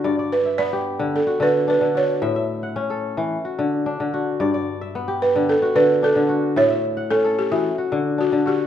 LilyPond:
<<
  \new Staff \with { instrumentName = "Balafon" } { \time 4/4 \key d \major \tempo 4 = 110 r8 b'8 d''4 a'8 b'8 b'8 cis''8~ | cis''4 r2. | r4. b'8 a'8 b'8 a'4 | cis''4 a'8 g'16 fis'4~ fis'16 fis'8 g'8 | }
  \new Staff \with { instrumentName = "Kora" } { \time 4/4 \key d \major <fis' d''>16 d''8 e''8 g'8. r16 fis'8. d'8 fis'8 | e''16 e''8 fis''8 a'8. r16 fis'8. d'8 fis'8 | d''16 d''8 e''8 g'8. r16 fis'8. d'8 fis'8 | e''16 e''8 fis''8 a'8. r16 fis'8. d'8 fis'8 | }
  \new Staff \with { instrumentName = "Kora" } { \clef bass \time 4/4 \key d \major g,8 r8 b8 r16 d16 r8 d8 r16 d8 r16 | a,8 r8 cis'8 r16 e16 r8 d8 r16 d8 r16 | g,8 r8 b8 r16 d16 r8 d8 r16 d8 r16 | a,8 r8 cis'8 r16 e16 r8 d8 r16 d8 r16 | }
>>